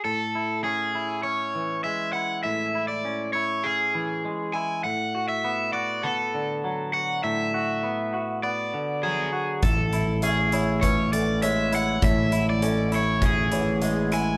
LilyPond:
<<
  \new Staff \with { instrumentName = "Overdriven electric guitar" } { \time 4/4 \key a \major \tempo 4 = 100 a'4 gis'4 cis''4 e''8 fis''8 | e''8. d''8. cis''8 gis'4. gis''8 | fis''8. e''8. d''8 a'4. fis''8 | e''2 d''4 gis'4 |
a'4 gis'4 cis''8 d''8 e''8 fis''8 | e''8. d''8. cis''8 gis'4. gis''8 | }
  \new Staff \with { instrumentName = "Felt piano" } { \time 4/4 \key a \major r1 | r1 | r1 | r1 |
e''4 e''8 cis''8 b'8 a'8 cis''4 | cis''4 a'4 r8 cis''4 r8 | }
  \new Staff \with { instrumentName = "Clean electric guitar" } { \time 4/4 \key a \major a,8 e'8 cis'8 e'8 cis'8 e8 gis8 e'8 | a,8 e'8 cis'8 e'8 cis'8 e8 gis8 e'8 | a,8 fis'8 b8 fis'8 b8 d8 fis8 fis'8 | a,8 fis'8 b8 fis'8 b8 d8 fis8 fis'8 |
a,8 e'8 cis'8 e'8 cis'8 e8 gis8 e'8 | a,8 e'8 cis'8 e'8 cis'8 e8 gis8 e'8 | }
  \new Staff \with { instrumentName = "Fingered electric bass" } { \clef bass \time 4/4 \key a \major r1 | r1 | r1 | r1 |
a,,1 | a,,1 | }
  \new DrumStaff \with { instrumentName = "Drums" } \drummode { \time 4/4 r4 r4 r4 r4 | r4 r4 r4 r4 | r4 r4 r4 r4 | r4 r4 r4 r4 |
<hh bd>8 hh8 hh8 hh8 <hh bd>8 hh8 hh8 hh8 | <hh bd>8 hh8 hh8 hh8 <hh bd>8 hh8 hh8 hh8 | }
>>